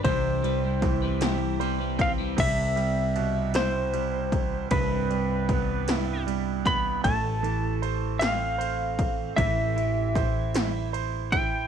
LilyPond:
<<
  \new Staff \with { instrumentName = "Electric slide guitar" } { \time 6/8 \key c \major \tempo 4. = 51 c''2 r8 f''8 | e''4. c''4. | b'2 r8 b''8 | a''4. f''4. |
e''2 r8 g''8 | }
  \new Staff \with { instrumentName = "Clean electric guitar" } { \time 6/8 \key c \major <c e g c' e'>8 <g c' e' b'>16 <g c' e'>8 <g c' e' b'>16 <c e g c' e'>8 <g c' e' b'>16 <g c' e' b'>8 <g c' e' b'>16 | r2. | r2. | r2. |
r2. | }
  \new Staff \with { instrumentName = "Grand piano" } { \time 6/8 \key c \major c8 g8 e8 g'8 <g c''>8 <c' g''>8 | c8 g8 b,8 e'8 g4 | g,8 g8 b8 e'8 g8 b8 | a8 e8 c''8 c'8 c''4 |
e8 e'8 c''8 e'8 c''8 e'8 | }
  \new Staff \with { instrumentName = "Fretless electric bass" } { \clef bass \time 6/8 \key c \major c,2. | c,2. | c,2. | a,,2. |
a,,2. | }
  \new DrumStaff \with { instrumentName = "Drums" } \drummode { \time 6/8 <bd cymr>8 cymr8 <bd cymr sn>8 <cymr sn>8 cymr8 <bd cymr>8 | <cymc bd cymr>8 cymr8 cymr8 <cymr sn>8 cymr8 <bd cymr>8 | <bd cymr>8 cymr8 <bd cymr>8 <cymr sn>8 cymr8 <bd cymr>8 | <bd cymr>8 cymr8 cymr8 <cymr sn>8 cymr8 <bd cymr>8 |
<bd cymr>8 cymr8 <bd cymr sn>8 <cymr sn>8 cymr8 <bd cymr>8 | }
>>